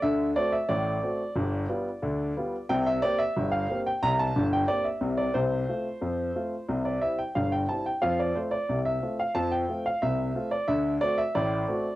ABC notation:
X:1
M:2/4
L:1/16
Q:1/4=90
K:F
V:1 name="Grand piano"
e2 d e d4- | d8 | g e d e2 f2 g | b a2 g d e2 d |
c8- | c d e g f g a g | f d c d2 e2 f | a g2 f e3 d |
e2 d e d4 |]
V:2 name="Grand piano"
[D,,D,]2 [A,C^F]2 [A,,,A,,]2 [A,CF]2 | [G,,,G,,]2 [G,=B,F]2 [D,,D,]2 [G,B,F]2 | [C,,C,]2 [B,CG]2 [G,,,G,,]2 [B,CG]2 | [C,,C,]2 [G,,,G,,]2 [B,CG]2 [C,,C,]2 |
[C,,C,]2 [A,CF]2 [F,,F,]2 [A,CF]2 | [C,,C,]2 [G,CE]2 [G,,,G,,]2 [G,CE]2 | [F,,F,]2 [A,CF]2 [C,,C,]2 [A,CF]2 | [F,,F,]2 [A,F]2 [C,,C,]2 [A,CF]2 |
[D,,D,]2 [A,C^F]2 [A,,,A,,]2 [A,CF]2 |]